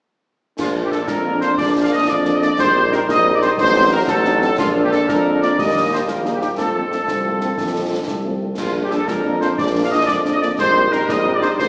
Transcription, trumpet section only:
0.60 0.71 F4 medium
0.85 0.92 G4 medium
0.91 1.07 A4 medium
1.07 1.39 A#4 medium
1.41 1.57 C5 medium
1.57 1.68 D5 medium
1.82 1.86 F5 medium
1.92 2.07 D#5 medium
2.07 2.33 D5 medium
2.34 2.38 D#5 medium
2.42 2.58 D5 medium
2.59 2.90 C5 medium
2.93 3.00 A#4 medium
3.10 3.32 D#5 medium
3.35 3.42 D5 medium
3.42 3.50 C5 medium
3.59 3.90 C5 loud
3.92 3.99 A#4 medium
4.08 4.39 A4 medium
4.41 4.57 A4 medium
4.58 4.69 F4 medium
4.84 4.91 G4 medium
4.91 5.07 A4 medium
5.08 5.39 A#4 medium
5.42 5.57 D5 medium
5.58 5.92 D#5 medium
5.92 6.00 C5 medium
6.09 6.20 A#4 medium
6.34 6.40 G4 medium
6.41 6.49 G4 medium
6.57 8.37 A4 medium
8.59 8.70 F4 medium
8.84 8.92 G4 medium
8.91 9.08 A4 medium
9.08 9.41 A#4 medium
9.40 9.48 C5 medium
9.58 9.69 D5 medium
9.83 9.87 F5 medium
9.91 10.07 D#5 medium
10.06 10.18 D5 medium
10.33 10.41 D#5 medium
10.40 10.48 D5 medium
10.59 10.90 C5 medium
10.92 11.09 A#4 medium
11.09 11.33 D#5 medium
11.35 11.42 D5 medium
11.42 11.49 C5 medium
11.58 11.68 C5 loud

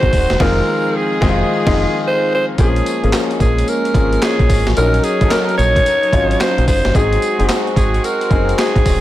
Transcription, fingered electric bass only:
0.03 0.11 G#1 loud
0.13 0.27 D#1 medium
0.30 0.38 E1 medium
0.40 0.60 F1 loud
1.22 1.42 F1 loud
1.67 1.84 F1 loud
2.59 2.80 A#1 loud
3.04 3.11 G#1 medium
3.40 3.61 A#1 loud
3.95 4.16 G#1 medium
4.40 4.47 A#1 medium
4.50 4.63 G#1 medium
4.68 4.75 A1 loud
4.77 4.98 A#1 loud
5.21 5.29 G#1 medium
5.59 5.80 A#1 loud
6.13 6.34 G#1 loud
6.58 6.65 A#1 medium
6.68 6.81 F#1 loud
6.85 6.93 G1 medium
6.95 7.16 G#1 loud
7.40 7.47 F#1 medium
7.76 7.98 G#1 loud
8.31 8.52 F#1 medium
8.76 8.83 G#1 loud
8.86 8.99 D#1 medium

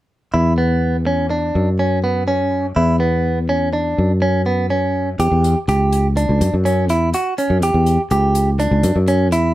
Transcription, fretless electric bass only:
0.34 1.53 E2 medium
1.55 2.74 F#2 medium
2.76 3.96 E2 medium
3.98 5.17 F#2 medium
5.19 5.31 E2 medium
5.31 5.54 E2 medium
5.68 6.25 C#2 medium
6.29 6.40 C#2 medium
6.41 6.52 F#2 medium
6.54 6.89 F#2 medium
6.89 7.12 E2 medium
7.50 7.62 F#2 medium
7.62 7.74 E2 medium
7.74 7.97 E2 medium
8.11 8.68 C#2 medium
8.71 8.83 C#2 medium
8.84 8.95 F#2 medium
8.96 9.32 F#2 medium
9.32 9.54 E2 medium

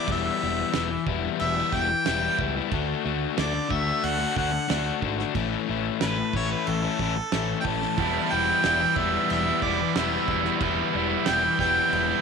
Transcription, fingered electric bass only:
0.08 0.28 E1 medium
0.43 0.62 E1 medium
0.75 0.95 E1 medium
1.07 1.27 E1 medium
1.41 1.61 E1 loud
1.73 1.93 E1 medium
2.08 2.27 E1 loud
2.39 2.59 C#2 medium
2.72 2.92 D2 medium
3.05 3.25 D2 medium
3.38 3.58 D2 medium
3.71 3.91 D2 medium
4.04 4.24 D2 loud
4.37 4.57 D2 medium
4.70 4.90 D2 medium
5.03 5.23 G#1 medium
5.35 5.55 A1 medium
5.69 5.89 A1 medium
6.02 6.22 A1 medium
6.34 6.54 A1 medium
6.68 6.87 A1 loud
7.00 7.20 A1 medium
7.33 7.53 A1 medium
7.65 7.85 A1 medium
7.98 8.18 E1 medium
8.32 8.52 E1 medium
8.64 8.84 E1 medium
8.96 9.16 E1 medium
9.31 9.50 E1 loud
9.62 9.82 E1 medium
9.96 10.16 E1 medium
10.28 10.48 E1 medium
10.61 10.81 E1 medium
10.95 11.14 E1 medium
11.28 11.47 E1 medium
11.60 11.79 E1 medium
11.92 12.12 E1 loud

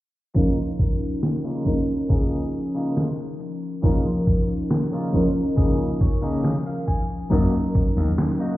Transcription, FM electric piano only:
0.34 1.60 F3 medium
0.34 1.61 C#4 medium
0.34 1.61 D#4 medium
0.34 1.62 A#4 loud
1.65 3.78 F3 medium
1.65 3.78 C#4 medium
1.65 3.79 D#4 medium
1.65 3.79 A#4 medium
3.82 5.08 F3 medium
3.82 5.09 C#4 medium
3.82 5.09 D#4 medium
3.82 5.10 A#4 medium
5.13 7.26 F3 medium
5.13 7.26 C#4 medium
5.13 7.27 D#4 medium
5.13 7.27 A#4 loud
7.30 8.56 F#3 medium
7.30 8.57 C#4 medium
7.30 8.57 D#4 medium
7.30 8.57 A#4 loud

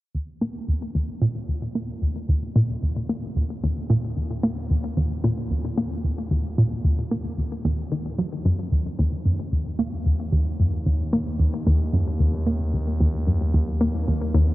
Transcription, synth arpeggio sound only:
0.15 0.30 D#2 medium
0.41 0.57 A#3 medium
0.68 0.92 D#2 medium
0.95 1.18 D#2 medium
1.22 1.45 A#2 medium
1.48 1.64 D#2 medium
1.75 1.91 A#3 medium
2.02 2.26 D#2 medium
2.29 2.52 D#2 medium
2.56 2.79 A#2 medium
2.83 2.98 D#2 medium
3.09 3.25 A#3 medium
3.36 3.60 D#2 medium
3.64 3.87 D#2 medium
3.90 4.13 A#2 medium
4.16 4.32 D#2 medium
4.43 4.59 A#3 medium
4.70 4.94 D#2 medium
4.97 5.20 D#2 medium
5.24 5.47 A#2 medium
5.51 5.66 D#2 medium
5.78 5.93 A#3 medium
6.04 6.28 D#2 medium
6.31 6.54 D#2 medium
6.58 6.81 A#2 medium
6.84 7.00 D#2 medium
7.11 7.27 A#3 medium
7.38 7.61 D#2 medium
7.65 7.88 D#2 medium
7.92 8.07 D#3 medium
8.19 8.34 F#3 medium
8.45 8.61 F#2 medium
8.72 8.95 D#2 medium
8.99 9.22 D#2 loud
9.26 9.41 F#2 medium
9.52 9.68 D#2 medium
9.79 9.95 A#3 medium
10.06 10.29 D#2 medium
10.32 10.56 D#2 medium
10.60 10.75 F#2 medium
10.87 11.02 D#2 medium
11.13 11.29 A#3 medium
11.40 11.63 D#2 medium
11.67 11.90 D#2 medium
11.93 12.09 F#2 medium
12.20 12.36 D#2 medium
12.47 12.62 A#3 medium
12.74 12.97 D#2 medium
13.00 13.24 D#2 medium
13.27 13.43 F#2 medium
13.54 13.70 D#2 medium
13.81 13.96 A#3 medium
14.08 14.31 D#2 medium
14.34 14.54 D#2 medium

